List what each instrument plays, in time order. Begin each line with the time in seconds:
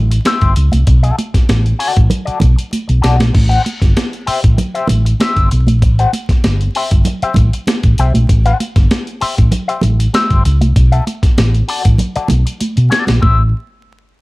Already playing: fingered electric bass A1
0.11 muted clean electric guitar stroke, closed hi-hat
0.25 clean electric guitar G4 C5 E5, snare, closed hi-hat, high conga
0.41 fingered electric bass G1, kick, closed hi-hat
0.56 fingered electric bass C#2, closed hi-hat
0.72 fingered electric bass C2, muted clean electric guitar stroke, closed hi-hat, high conga
0.87 fingered electric bass B1, muted clean electric guitar stroke, kick, closed hi-hat
1.03 clean electric guitar F#4 A4 E5, closed hi-hat
1.19 closed hi-hat, muted conga
1.34 muted clean electric guitar stroke, muted fingered electric bass stroke, kick, snare, closed hi-hat
1.49 fingered electric bass A1, snare, closed hi-hat, high conga
1.64 muted clean electric guitar stroke, closed hi-hat
1.79 clean electric guitar F#4 A4 D5, open hi-hat
1.95 fingered electric bass A1, muted clean electric guitar stroke, kick, closed hi-hat
2.10 muted clean electric guitar stroke, closed hi-hat, low conga
2.25 clean electric guitar F#4 A4 D5, muted fingered electric bass stroke, closed hi-hat
2.40 fingered electric bass B1, kick, closed hi-hat, muted conga, low conga
2.56 muted clean electric guitar stroke, closed hi-hat
2.71 muted clean electric guitar stroke, closed hi-hat, high conga
2.88 fingered electric bass B1, muted clean electric guitar stroke, closed hi-hat
3.01 fingered electric bass B1, clean electric guitar F#4 A4 D5, snare, closed hi-hat
3.18 fingered electric bass A#1, muted clean electric guitar stroke, snare, closed hi-hat, high conga
3.33 fingered electric bass A1, muted clean electric guitar stroke, kick, crash
3.49 clean electric guitar G4 C5 F#5, closed hi-hat
3.64 muted clean electric guitar stroke, closed hi-hat, muted conga
3.80 fingered electric bass G1, muted clean electric guitar stroke, kick, snare, closed hi-hat
3.97 snare, closed hi-hat, high conga
4.12 muted clean electric guitar stroke, closed hi-hat
4.26 clean electric guitar G4 C5 E5, muted fingered electric bass stroke, open hi-hat
4.43 fingered electric bass A1, muted clean electric guitar stroke, kick, closed hi-hat
4.57 muted clean electric guitar stroke, closed hi-hat, muted conga, low conga
4.74 clean electric guitar G4 C5 E5, closed hi-hat
4.87 fingered electric bass A1, muted clean electric guitar stroke, closed hi-hat, muted conga, low conga
5.05 muted clean electric guitar stroke, closed hi-hat
5.20 clean electric guitar G4 C5 E5, snare, closed hi-hat, high conga
5.36 fingered electric bass G1, kick, closed hi-hat
5.51 fingered electric bass B1, muted clean electric guitar stroke, closed hi-hat
5.67 fingered electric bass A#1, muted clean electric guitar stroke, closed hi-hat, high conga
5.82 fingered electric bass A1, muted clean electric guitar stroke, kick, closed hi-hat
5.99 clean electric guitar G4 C5 F#5, closed hi-hat
6.13 muted clean electric guitar stroke, closed hi-hat, muted conga
6.29 muted fingered electric bass stroke, muted clean electric guitar stroke, kick, snare, closed hi-hat
6.44 fingered electric bass G1, snare, closed hi-hat, high conga
6.61 muted clean electric guitar stroke, closed hi-hat
6.75 clean electric guitar G4 C5 E5, open hi-hat
6.91 fingered electric bass G1, muted clean electric guitar stroke, kick, closed hi-hat
7.05 muted clean electric guitar stroke, closed hi-hat, muted conga, low conga
7.22 clean electric guitar G4 C5 E5, muted fingered electric bass stroke, closed hi-hat
7.34 fingered electric bass A1, kick, closed hi-hat, muted conga, low conga
7.53 muted clean electric guitar stroke, closed hi-hat
7.67 muted clean electric guitar stroke, snare, closed hi-hat, high conga
7.83 fingered electric bass A1, muted clean electric guitar stroke, kick, closed hi-hat
7.98 fingered electric bass B1, clean electric guitar G4 C5 E5, closed hi-hat
8.14 fingered electric bass A#1, muted clean electric guitar stroke, closed hi-hat, high conga
8.29 fingered electric bass A1, muted clean electric guitar stroke, kick, closed hi-hat
8.45 clean electric guitar G4 C5 F#5, closed hi-hat
8.59 muted clean electric guitar stroke, closed hi-hat, muted conga
8.76 fingered electric bass G1, muted clean electric guitar stroke, kick, snare, closed hi-hat
8.91 snare, closed hi-hat, high conga
9.06 muted clean electric guitar stroke, closed hi-hat
9.21 clean electric guitar G4 C5 E5, muted fingered electric bass stroke, open hi-hat
9.37 fingered electric bass A1, muted clean electric guitar stroke, kick, closed hi-hat
9.51 muted clean electric guitar stroke, closed hi-hat, low conga
9.68 clean electric guitar G4 C5 E5, closed hi-hat
9.81 fingered electric bass A1, closed hi-hat, muted conga, low conga
9.99 muted clean electric guitar stroke, closed hi-hat
10.13 clean electric guitar G4 C5 E5, snare, closed hi-hat, high conga
10.30 fingered electric bass G1, kick, closed hi-hat
10.45 fingered electric bass C#2, muted clean electric guitar stroke, closed hi-hat
10.61 fingered electric bass C2, muted clean electric guitar stroke, closed hi-hat, high conga
10.76 fingered electric bass B1, muted clean electric guitar stroke, kick, closed hi-hat
10.92 clean electric guitar F#4 A4 E5, closed hi-hat
11.07 closed hi-hat, muted conga
11.22 muted clean electric guitar stroke, muted fingered electric bass stroke, kick, snare, closed hi-hat
11.38 fingered electric bass A1, snare, closed hi-hat, high conga
11.54 muted clean electric guitar stroke, closed hi-hat
11.68 clean electric guitar F#4 A4 D5, open hi-hat
11.85 fingered electric bass A1, muted clean electric guitar stroke, kick, closed hi-hat
11.98 muted clean electric guitar stroke, closed hi-hat, muted conga, low conga
12.16 clean electric guitar F#4 A4 D5, muted fingered electric bass stroke, closed hi-hat
12.28 fingered electric bass B1, muted clean electric guitar stroke, closed hi-hat, muted conga, low conga
12.46 muted clean electric guitar stroke, closed hi-hat
12.60 muted clean electric guitar stroke, closed hi-hat, high conga
12.76 fingered electric bass B2, muted clean electric guitar stroke, closed hi-hat
12.89 clean electric guitar F#4 A4 D5, snare, closed hi-hat, high conga
13.07 fingered electric bass A#1, muted clean electric guitar stroke, snare, closed hi-hat, high conga
13.21 fingered electric bass A1, clean electric guitar G4 C5 E5, kick, muted conga